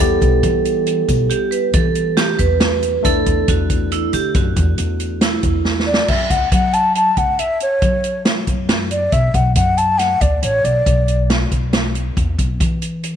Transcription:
Already playing: tine electric piano G3
0.00 upright bass E2, tine electric piano B3 E4 G4, vibraphone A4, shaker
0.21 upright bass B1, kick, closed hi-hat, shaker
0.43 upright bass E3, kick, closed hi-hat, shaker
0.65 closed hi-hat, shaker
0.86 closed hi-hat
1.08 upright bass B1, kick, closed hi-hat, shaker
1.30 vibraphone G4, closed hi-hat
1.51 vibraphone B4, closed hi-hat, shaker
1.73 upright bass E3, vibraphone A4, kick, closed hi-hat
1.95 closed hi-hat
2.17 vibraphone G4, snare, closed hi-hat, shaker
2.39 upright bass E2, vibraphone B4, kick, closed hi-hat, shaker
2.60 snare, closed hi-hat, shaker
2.83 closed hi-hat
3.03 upright bass E2, tine electric piano A3 D4 E4 A4, vibraphone A4, kick, closed hi-hat, shaker
3.26 upright bass E2, kick, closed hi-hat
3.48 upright bass E2, vibraphone F#4, kick, closed hi-hat
3.70 kick, closed hi-hat
3.92 vibraphone E4, closed hi-hat, shaker
4.13 upright bass D3, vibraphone G4, closed hi-hat, shaker
4.34 upright bass F#2, vibraphone F#4, kick, closed hi-hat
4.56 upright bass E2, kick, closed hi-hat
4.78 upright bass E2, closed hi-hat, shaker
5.00 closed hi-hat, shaker
5.21 vibraphone E4, snare, closed hi-hat, shaker
5.43 upright bass E2, kick, closed hi-hat
5.65 snare
5.79 snare
5.86 flute D5
5.94 snare
6.08 upright bass F#2, flute E5, kick, crash
6.30 upright bass C#2, flute F#5, kick, closed hi-hat
6.52 upright bass F#3, flute F#5, kick, closed hi-hat
6.73 flute A5, closed hi-hat
6.95 flute A5, closed hi-hat
7.17 upright bass C#2, flute F#5, kick, closed hi-hat
7.39 flute E5, closed hi-hat
7.60 flute C#5, closed hi-hat
7.82 upright bass F#3, kick, closed hi-hat
8.04 closed hi-hat
8.25 snare, closed hi-hat
8.47 upright bass F#2, kick, closed hi-hat
8.69 snare, closed hi-hat
8.91 flute D5, closed hi-hat
9.12 upright bass B1, flute E5, kick, closed hi-hat
9.34 upright bass B1, flute F#5, kick, closed hi-hat
9.55 upright bass F#2, flute F#5, kick, closed hi-hat
9.78 flute A5, closed hi-hat
9.98 flute F#5, snare, closed hi-hat
10.21 upright bass D2, flute D5, kick, closed hi-hat
10.42 upright bass A1, flute C#5, closed hi-hat
10.64 upright bass B1, flute D5, closed hi-hat
10.86 upright bass B1, kick, closed hi-hat
11.08 closed hi-hat
11.30 snare, closed hi-hat
11.52 upright bass B1, kick, closed hi-hat
11.73 snare, closed hi-hat
11.95 closed hi-hat
12.17 upright bass E2, kick, closed hi-hat
12.39 upright bass B1, kick, closed hi-hat
12.60 upright bass E3, kick, closed hi-hat
12.82 closed hi-hat
13.03 closed hi-hat

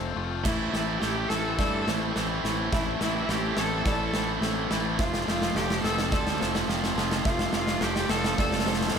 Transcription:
Already playing: fingered electric bass F1, distorted electric guitar F3 A3 C4 F4, clean electric guitar A3 F4, felt piano C5
0.16 fingered electric bass F1, distorted electric guitar F3 A3 C4 F4
0.44 fingered electric bass A1, distorted electric guitar A2 E3 A3 C4 E4, cello E4, felt piano E5, kick, snare, crash
0.73 fingered electric bass A1, distorted electric guitar A2 E3 A3 C4 E4, cello E4, snare
0.99 fingered electric bass A1, distorted electric guitar A2 E3 A3 C4, cello G4, snare
1.04 distorted electric guitar E4
1.29 fingered electric bass A1, distorted electric guitar A2 E3 A3 C4 E4, cello A4, snare
1.58 fingered electric bass G2, distorted electric guitar A2 E3 A3 C4 E4, cello A4, felt piano D5, kick, snare
1.86 fingered electric bass A1, distorted electric guitar A2 E3 A3 C4 E4, felt piano C5, snare
2.16 fingered electric bass A1, distorted electric guitar A2 E3 A3 C4 E4, snare
2.44 fingered electric bass A1, distorted electric guitar A2 E3 A3 C4 E4, snare
2.72 fingered electric bass A1, distorted electric guitar A2 E3 A3 C4 E4, cello E4, felt piano E5, kick, snare
3.00 fingered electric bass A1, distorted electric guitar A2 E3 A3 C4 E4, cello E4, snare
3.28 fingered electric bass A1, distorted electric guitar A2 E3 A3 C4 E4, cello G4, snare
3.57 fingered electric bass A1, distorted electric guitar A2 E3 A3 C4 E4, cello A4, snare
3.85 fingered electric bass A1, distorted electric guitar A2 E3 A3 C4 E4, cello A4, felt piano D5, kick, snare
4.14 distorted electric guitar A2 E3 A3 C4 E4, felt piano C5, snare
4.41 fingered electric bass A1, distorted electric guitar A2 E3 A3 C4 E4, snare
4.70 fingered electric bass A1, distorted electric guitar A2 E3 A3 C4 E4, snare
4.98 fingered electric bass F1, distorted electric guitar F2 C3 F3 A3 C4 F4, cello F4, felt piano E5, kick, snare
5.14 snare
5.27 fingered electric bass F1, distorted electric guitar F2 C3 F3 A3 C4 F4, cello F4, snare
5.42 snare
5.55 fingered electric bass F1, distorted electric guitar F2 C3 F3 A3 C4 F4, cello G4, snare
5.70 snare
5.84 fingered electric bass F1, distorted electric guitar F2 C3 F3 A3 C4 F4, cello A4, snare
5.98 snare
6.12 fingered electric bass D2, distorted electric guitar F2 C3 F3 A3 C4 F4, cello A4, felt piano D5, kick, snare
6.27 snare
6.40 fingered electric bass F1, distorted electric guitar F2 C3 F3 A3 C4 F4, felt piano C5, snare
6.55 snare
6.68 fingered electric bass F1, distorted electric guitar F2 C3 F3 A3 C4 F4, snare
6.84 snare
6.96 fingered electric bass F1, distorted electric guitar F2 C3 F3 A3 C4 F4, snare
7.11 snare
7.24 fingered electric bass F1, distorted electric guitar F2 C3 F3 A3 C4 F4, cello F4, felt piano E5, kick, snare
7.39 snare
7.53 fingered electric bass F1, distorted electric guitar F2 C3 F3 A3 C4 F4, cello F4, snare
7.67 snare
7.81 fingered electric bass F1, distorted electric guitar F2 C3 F3 A3 C4 F4, cello G4, snare
7.96 snare
8.09 fingered electric bass F1, distorted electric guitar F2 C3 F3 A3 C4 F4, cello A4, snare
8.24 snare
8.37 fingered electric bass F1, distorted electric guitar F2 C3 F3 A3 C4 F4, cello A4, felt piano D5, kick, snare
8.52 snare
8.59 snare
8.65 distorted electric guitar F2 C3 F3 A3 C4 F4, felt piano C5, snare
8.74 snare
8.81 snare
8.88 snare
8.94 fingered electric bass F1, distorted electric guitar F2 C3 F3 A3 C4, snare

